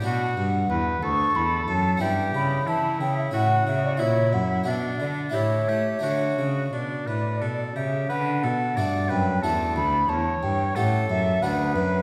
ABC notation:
X:1
M:3/4
L:1/16
Q:1/4=90
K:D
V:1 name="Flute"
f6 c'2 b2 a2 | g2 b2 a2 g e f2 e d | c2 f2 e2 d2 c4 | c3 z d6 e2 |
f6 g2 a2 b2 | a2 g2 f2 e2 f2 B2 |]
V:2 name="Oboe"
F2 z2 B2 A6 | G4 E4 F4 | E4 D4 E2 G2 | F4 D2 B2 A2 G2 |
B2 A2 d2 B2 A4 | c4 A4 B4 |]
V:3 name="Harpsichord"
[B,DF]12 | [B,DE]8 [CE]4 | [EF]4 [DF]4 [A,EG]4 | [A,DF]12 |
z4 [A,DF]4 [A,DF]4 | z4 [A,CG]4 [A,DF]4 |]
V:4 name="Harpsichord" clef=bass
B,,2 G,,2 E,,2 D,,2 E,,2 F,,2 | G,,2 C,2 E,2 C,2 A,,2 C,2 | ^A,,2 F,,2 B,,2 D,2 =A,,2 A,2 | D,2 C,2 B,,2 A,,2 B,,2 C,2 |
D,2 B,,2 G,,2 F,,2 E,,2 D,,2 | E,,2 G,,2 A,,2 F,,2 D,,2 F,,2 |]
V:5 name="Cello" clef=bass
B,,2 G,,2 E,,2 D,,2 E,,2 F,,2 | G,,2 C,2 E,2 C,2 A,,2 C,2 | ^A,,2 F,,2 B,,2 D,2 =A,,2 A,2 | D,2 C,2 B,,2 A,,2 B,,2 C,2 |
D,2 B,,2 G,,2 F,,2 E,,2 D,,2 | E,,2 G,,2 A,,2 F,,2 D,,2 F,,2 |]